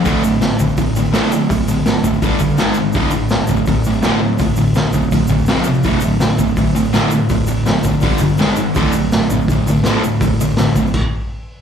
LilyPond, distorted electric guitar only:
\new Staff \with { instrumentName = "Distorted electric guitar" } { \clef bass \time 4/4 \key d \minor \tempo 4 = 165 <d, a, d>8 <d, a,>8 <d, a,>8 <d, a,>8 <d, a,>8 <d, a,>8 <d, a, d>8 <d, a,>8 | <d, a,>8 <d, a,>8 <d, a,>8 <d, a,>8 <g, d g>8 <g, d>8 <gis, dis gis>8 <gis, dis>8 | <d, a, d>8 <d, a,>8 <d, a,>8 <d, a,>8 <d, a,>8 <d, a,>8 <d, a, d>8 <d, a,>8 | <d, a,>8 <d, a,>8 <d, a,>8 <d, a,>8 <d, a,>8 <d, a,>8 <f, c f>8 <f, c>8 |
<d, a, d>8 <d, a,>8 <d, a,>8 <d, a,>8 <d, a,>8 <d, a,>8 <d, a, d>8 <d, a,>8 | <d, a,>8 <d, a,>8 <d, a,>8 <d, a,>8 <g, d g>8 <g, d>8 <gis, dis gis>8 <gis, dis>8 | <d, a, d>8 <d, a,>8 <d, a,>8 <d, a,>8 <d, a,>8 <d, a,>8 <d, a, d>8 <d, a,>8 | <d, a,>8 <d, a,>8 <d, a,>8 <d, a,>8 r2 | }